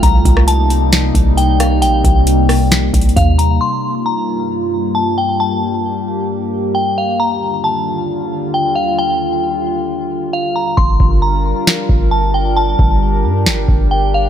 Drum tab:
HH |x-----x-----x-----x-----x-----x-----x-----x-----|x-----x-----x-----o-----x-----x-x-x-x-----x-----|------------------------------------------------|------------------------------------------------|
SD |---------r--------------o-----------------r-----|------------------r-----o-----------------------|------------------------------------------------|------------------------------------------------|
BD |o-----o-----------------------o-----------------|------o-----------------------o-----o-----------|------------------------------------------------|------------------------------------------------|

HH |------------------------------------------------|------------------------------------------------|------------------------------------------------|------------------------------------------------|
SD |------------------------------------------------|------------------------------------------------|------------------------o-----------------------|------------------------o-----------------------|
BD |------------------------------------------------|------------------------------------------------|o-----o-----------------------o-----------------|------o-----------------------o-----------------|